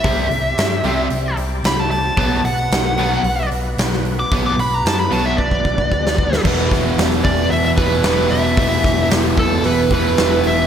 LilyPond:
<<
  \new Staff \with { instrumentName = "Lead electric guitar" } { \time 4/4 \key e \minor \tempo 4 = 112 e''2~ e''8 r8 b''16 a''16 a''8~ | a''8 fis''2 r4 r16 d'''16 | r16 d'''16 b''16 ais''16 a''16 b''16 a''16 e''16 d''2 | r4. d''8 e''16 e''16 b'4 e''8~ |
e''4 r8 a'8 b'8 b'4 e''8 | }
  \new Staff \with { instrumentName = "Tonewheel organ" } { \time 4/4 \key e \minor d''1 | b'1~ | b'1 | fis'1 |
g'1 | }
  \new Staff \with { instrumentName = "Tonewheel organ" } { \time 4/4 \key e \minor <c' g'>1 | <b fis'>1~ | <b fis'>1 | <e b>1~ |
<e b>1 | }
  \new Staff \with { instrumentName = "Overdriven electric guitar" } { \clef bass \time 4/4 \key e \minor <c g c'>8 r4 <c g c'>8 r2 | <b, fis b>8 r4 <b, fis b>8 r2 | <b, fis b>8 r4 <b, fis b>8 r2 | <e, b, e>2~ <e, b, e>8 <e, b, e>8 <e, b, e>4 |
<e, b, e>2~ <e, b, e>8 <e, b, e>8 <e, b, e>4 | }
  \new Staff \with { instrumentName = "Picked electric bass" } { \clef bass \time 4/4 \key e \minor c,8 c,8 g,8 c,8 c,8 c,8 c,4 | b,,8 b,,8 b,,4 b,,8 b,,8 b,,4 | b,,8 b,,8 fis,8 b,,8 b,,8 b,,8 d,4 | e,,8 e,,8 e,,8 e,,8 e,8 e,,8 e,,8 e,,8 |
e,,8 e,,8 e,,8 e,,8 e,,8 e,,8 e,,8 e,,8 | }
  \new DrumStaff \with { instrumentName = "Drums" } \drummode { \time 4/4 <hho bd>8 hho8 <hho sn>8 hho8 hho8 hho8 <hho sn>8 hho8 | <hho bd>8 hho8 <hho sn>8 hho8 hho8 hho8 <hho sn>16 sn16 hho8 | <hho bd>8 hho8 <hho sn>8 hho8 bd16 bd16 bd16 bd16 bd16 sn16 bd16 sn16 | <cymc bd>8 <hho bd sn>8 <hho sn>8 <hho bd>8 hho8 <hho bd>8 <hho sn>8 hho8 |
<hho bd>8 <hho bd sn>8 <hho sn>8 <hho bd>8 hho8 <hho bd>8 <hho sn>8 hho8 | }
>>